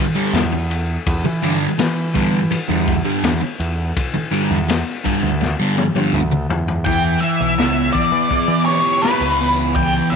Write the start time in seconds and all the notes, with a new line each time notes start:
0.15 G2 D3 G3
0.33 E2, snare, ride
0.52 muted distorted electric guitar stroke
0.71 ride
1.07 E2, kick, ride
1.24 E3, muted distorted electric guitar stroke
1.42 G2 D3 G3, ride
1.78 E3, muted distorted electric guitar stroke, snare, ride
2.14 G2 D3 G3, kick, ride
2.51 muted distorted electric guitar stroke, ride
2.68 E2 G2 D3 G3
2.88 kick, ride
3.05 G2 D3 G3
3.24 E2, snare, ride
3.41 muted distorted electric guitar stroke
3.60 E2, ride
3.97 kick, ride
4.14 muted distorted electric guitar stroke
4.31 G2 D3 G3, ride
4.51 E2
4.68 muted distorted electric guitar stroke, snare, ride
5.04 G2 D3 G3, kick, ride
5.23 D2
5.41 muted distorted electric guitar stroke, snare
5.59 G2 D3 G3
5.78 high tom
5.95 G2 D3 G3, high tom
6.13 D2, mid tom
6.31 muted distorted electric guitar stroke
6.49 E2, floor tom
6.68 floor tom
6.85 E2 E3 G5, kick, open hi-hat
7.20 E3 E5
7.41 B1
7.58 C#2 B3, snare, open hi-hat
7.93 E3 D5, kick
8.12 E3
8.31 B3, kick, open hi-hat
8.48 E3
8.66 G4 C#5
9.02 E4 B4, snare, open hi-hat
9.21 C#2
9.40 B3
9.75 E3 G5, kick, open hi-hat
10.10 B1 E3 E5